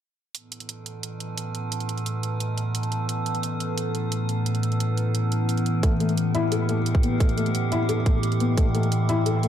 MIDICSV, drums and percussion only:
0, 0, Header, 1, 2, 480
1, 0, Start_track
1, 0, Tempo, 342857
1, 486, Time_signature, 4, 2, 24, 8
1, 13272, End_track
2, 0, Start_track
2, 0, Title_t, "Drums"
2, 485, Note_on_c, 9, 42, 91
2, 625, Note_off_c, 9, 42, 0
2, 725, Note_on_c, 9, 42, 68
2, 845, Note_off_c, 9, 42, 0
2, 845, Note_on_c, 9, 42, 35
2, 965, Note_off_c, 9, 42, 0
2, 965, Note_on_c, 9, 42, 90
2, 1105, Note_off_c, 9, 42, 0
2, 1205, Note_on_c, 9, 42, 66
2, 1345, Note_off_c, 9, 42, 0
2, 1445, Note_on_c, 9, 42, 94
2, 1585, Note_off_c, 9, 42, 0
2, 1685, Note_on_c, 9, 42, 67
2, 1825, Note_off_c, 9, 42, 0
2, 1925, Note_on_c, 9, 42, 94
2, 2065, Note_off_c, 9, 42, 0
2, 2165, Note_on_c, 9, 42, 63
2, 2305, Note_off_c, 9, 42, 0
2, 2405, Note_on_c, 9, 42, 90
2, 2526, Note_off_c, 9, 42, 0
2, 2526, Note_on_c, 9, 42, 35
2, 2646, Note_off_c, 9, 42, 0
2, 2646, Note_on_c, 9, 42, 69
2, 2766, Note_off_c, 9, 42, 0
2, 2766, Note_on_c, 9, 42, 36
2, 2885, Note_off_c, 9, 42, 0
2, 2885, Note_on_c, 9, 42, 98
2, 3025, Note_off_c, 9, 42, 0
2, 3125, Note_on_c, 9, 42, 70
2, 3265, Note_off_c, 9, 42, 0
2, 3365, Note_on_c, 9, 42, 98
2, 3505, Note_off_c, 9, 42, 0
2, 3605, Note_on_c, 9, 42, 66
2, 3745, Note_off_c, 9, 42, 0
2, 3846, Note_on_c, 9, 42, 90
2, 3965, Note_off_c, 9, 42, 0
2, 3965, Note_on_c, 9, 42, 35
2, 4085, Note_off_c, 9, 42, 0
2, 4085, Note_on_c, 9, 42, 67
2, 4225, Note_off_c, 9, 42, 0
2, 4325, Note_on_c, 9, 42, 90
2, 4465, Note_off_c, 9, 42, 0
2, 4565, Note_on_c, 9, 42, 66
2, 4685, Note_off_c, 9, 42, 0
2, 4685, Note_on_c, 9, 42, 36
2, 4805, Note_off_c, 9, 42, 0
2, 4805, Note_on_c, 9, 42, 91
2, 4945, Note_off_c, 9, 42, 0
2, 5045, Note_on_c, 9, 42, 69
2, 5185, Note_off_c, 9, 42, 0
2, 5285, Note_on_c, 9, 42, 97
2, 5425, Note_off_c, 9, 42, 0
2, 5525, Note_on_c, 9, 42, 66
2, 5665, Note_off_c, 9, 42, 0
2, 5765, Note_on_c, 9, 42, 89
2, 5905, Note_off_c, 9, 42, 0
2, 6005, Note_on_c, 9, 42, 63
2, 6145, Note_off_c, 9, 42, 0
2, 6245, Note_on_c, 9, 42, 85
2, 6365, Note_off_c, 9, 42, 0
2, 6365, Note_on_c, 9, 42, 34
2, 6485, Note_off_c, 9, 42, 0
2, 6485, Note_on_c, 9, 42, 64
2, 6605, Note_off_c, 9, 42, 0
2, 6605, Note_on_c, 9, 42, 34
2, 6725, Note_off_c, 9, 42, 0
2, 6725, Note_on_c, 9, 42, 88
2, 6865, Note_off_c, 9, 42, 0
2, 6965, Note_on_c, 9, 42, 66
2, 7105, Note_off_c, 9, 42, 0
2, 7205, Note_on_c, 9, 42, 92
2, 7345, Note_off_c, 9, 42, 0
2, 7445, Note_on_c, 9, 42, 65
2, 7585, Note_off_c, 9, 42, 0
2, 7685, Note_on_c, 9, 42, 88
2, 7805, Note_off_c, 9, 42, 0
2, 7805, Note_on_c, 9, 42, 35
2, 7925, Note_off_c, 9, 42, 0
2, 7925, Note_on_c, 9, 42, 61
2, 8065, Note_off_c, 9, 42, 0
2, 8165, Note_on_c, 9, 36, 111
2, 8165, Note_on_c, 9, 42, 85
2, 8305, Note_off_c, 9, 36, 0
2, 8305, Note_off_c, 9, 42, 0
2, 8405, Note_on_c, 9, 42, 63
2, 8525, Note_off_c, 9, 42, 0
2, 8525, Note_on_c, 9, 42, 34
2, 8644, Note_off_c, 9, 42, 0
2, 8644, Note_on_c, 9, 42, 84
2, 8784, Note_off_c, 9, 42, 0
2, 8884, Note_on_c, 9, 42, 63
2, 9024, Note_off_c, 9, 42, 0
2, 9125, Note_on_c, 9, 42, 90
2, 9265, Note_off_c, 9, 42, 0
2, 9365, Note_on_c, 9, 42, 61
2, 9505, Note_off_c, 9, 42, 0
2, 9605, Note_on_c, 9, 42, 86
2, 9725, Note_on_c, 9, 36, 103
2, 9745, Note_off_c, 9, 42, 0
2, 9845, Note_on_c, 9, 42, 61
2, 9865, Note_off_c, 9, 36, 0
2, 9985, Note_off_c, 9, 42, 0
2, 10085, Note_on_c, 9, 36, 112
2, 10085, Note_on_c, 9, 42, 88
2, 10205, Note_off_c, 9, 42, 0
2, 10205, Note_on_c, 9, 42, 34
2, 10225, Note_off_c, 9, 36, 0
2, 10325, Note_off_c, 9, 42, 0
2, 10325, Note_on_c, 9, 42, 63
2, 10445, Note_off_c, 9, 42, 0
2, 10445, Note_on_c, 9, 42, 34
2, 10565, Note_off_c, 9, 42, 0
2, 10565, Note_on_c, 9, 42, 87
2, 10705, Note_off_c, 9, 42, 0
2, 10805, Note_on_c, 9, 42, 64
2, 10945, Note_off_c, 9, 42, 0
2, 11045, Note_on_c, 9, 42, 92
2, 11185, Note_off_c, 9, 42, 0
2, 11285, Note_on_c, 9, 36, 100
2, 11285, Note_on_c, 9, 42, 63
2, 11425, Note_off_c, 9, 36, 0
2, 11425, Note_off_c, 9, 42, 0
2, 11525, Note_on_c, 9, 42, 84
2, 11645, Note_off_c, 9, 42, 0
2, 11645, Note_on_c, 9, 42, 34
2, 11765, Note_off_c, 9, 42, 0
2, 11765, Note_on_c, 9, 42, 61
2, 11905, Note_off_c, 9, 42, 0
2, 12005, Note_on_c, 9, 36, 113
2, 12005, Note_on_c, 9, 42, 88
2, 12145, Note_off_c, 9, 36, 0
2, 12145, Note_off_c, 9, 42, 0
2, 12245, Note_on_c, 9, 42, 66
2, 12365, Note_off_c, 9, 42, 0
2, 12365, Note_on_c, 9, 42, 34
2, 12485, Note_off_c, 9, 42, 0
2, 12485, Note_on_c, 9, 42, 87
2, 12625, Note_off_c, 9, 42, 0
2, 12725, Note_on_c, 9, 42, 66
2, 12865, Note_off_c, 9, 42, 0
2, 12965, Note_on_c, 9, 42, 90
2, 13105, Note_off_c, 9, 42, 0
2, 13205, Note_on_c, 9, 42, 64
2, 13272, Note_off_c, 9, 42, 0
2, 13272, End_track
0, 0, End_of_file